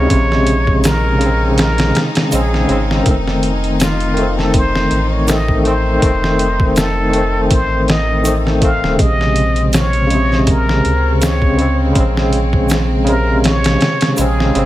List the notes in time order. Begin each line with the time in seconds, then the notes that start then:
Already playing: C3 C#3 G#3 C4 D#4 C#5
0.07 A#1 C#3 G#3, kick, closed hi-hat
0.15 C3
0.32 snare
0.47 closed hi-hat
0.67 kick
0.84 A#4, snare, closed hi-hat, shaker
1.18 C#3 G#3, closed hi-hat
1.26 C4
1.58 A#4, snare, closed hi-hat
1.78 snare, closed hi-hat
1.95 snare, closed hi-hat
2.15 snare, closed hi-hat
2.31 A#1 C#3 G#3 C4 G#4, closed hi-hat, shaker
2.54 snare
2.68 G#1 C#3 G#3, closed hi-hat
2.72 C4
2.91 snare
3.03 F1 D#3 A3, kick, closed hi-hat
3.11 C4
3.27 snare
3.43 closed hi-hat
3.64 closed hi-hat
3.80 F4, snare, closed hi-hat, shaker
4.00 closed hi-hat
4.14 D#3, closed hi-hat
4.18 A3 C4
4.38 A4, snare
4.54 C5, kick, closed hi-hat
4.75 snare
4.91 A1, closed hi-hat
5.12 C#5
5.27 D#3 A3 D#5, snare, closed hi-hat, shaker
5.31 C4
5.48 kick
5.64 D#3 A3 C4 C5, closed hi-hat
5.99 F1 D#3 A3, kick, closed hi-hat
6.06 C4
6.24 snare
6.39 closed hi-hat
6.60 kick
6.76 A4, snare, closed hi-hat, shaker
7.10 D#3 A3, closed hi-hat
7.18 C4
7.51 A1 C5, kick, closed hi-hat
7.88 D#5, snare, closed hi-hat
8.23 D#3 A3, closed hi-hat, shaker
8.27 C4
8.47 snare
8.61 D#3 A3 C4 F5, kick, closed hi-hat
8.83 D#1, snare
8.95 C#3, kick, closed hi-hat
8.99 A#1 C3 G#3 C4 D#5
9.21 snare
9.36 closed hi-hat
9.56 closed hi-hat
9.73 C#5, snare, closed hi-hat, shaker
9.93 closed hi-hat
10.07 C#3 G#3, closed hi-hat
10.15 C3
10.32 snare
10.47 A#4, kick, closed hi-hat
10.69 snare
10.85 C#2, closed hi-hat
11.21 C#3 G#3 C4 C#5, snare, closed hi-hat, shaker
11.42 kick
11.58 C#3 G#3 C4, closed hi-hat
11.93 A#1 C#3 G#3, kick, closed hi-hat
12.00 C4
12.17 snare
12.33 closed hi-hat
12.53 kick
12.69 snare, closed hi-hat, shaker
13.04 C#3 A#4, closed hi-hat
13.08 C3 G#3
13.44 C#5, snare, closed hi-hat
13.64 snare, closed hi-hat
13.81 snare, closed hi-hat
14.01 snare, closed hi-hat
14.17 A#1 C#3 G#3 C4 G#4, closed hi-hat, shaker
14.40 snare
14.55 G#1 C#3 G#3, closed hi-hat
14.59 C4